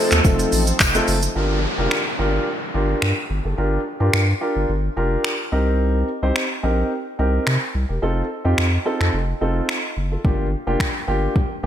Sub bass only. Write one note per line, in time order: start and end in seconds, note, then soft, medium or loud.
0.12 0.21 D#2 loud
0.25 0.45 F1 loud
0.52 0.73 A1 medium
0.80 1.01 F1 medium
1.08 1.28 F#1 loud
1.36 1.67 G1 loud
1.78 1.88 F1 medium
2.19 2.39 G1 medium
2.75 2.95 G1 medium
3.02 3.13 G2 medium
3.30 3.41 G1 medium
3.45 3.54 F#1 medium
3.58 3.78 G1 loud
4.00 4.10 G2 loud
4.13 4.34 G2 loud
4.56 4.65 G1 medium
4.69 4.89 G1 loud
4.97 5.17 F1 loud
5.52 6.04 C2 loud
6.23 6.32 C2 medium
6.64 6.84 A#1 medium
7.19 7.39 C2 medium
7.47 7.58 C3 loud
7.75 7.85 C2 loud
7.89 7.99 E1 medium
8.02 8.23 F1 loud
8.45 8.55 F2 loud
8.58 8.78 F2 loud
9.01 9.10 F2 medium
9.14 9.34 F1 medium
9.41 9.62 F1 medium
9.97 10.17 F#1 medium
10.25 10.56 G1 loud
10.67 10.77 F1 medium
11.08 11.28 G1 medium
11.63 11.66 G1 medium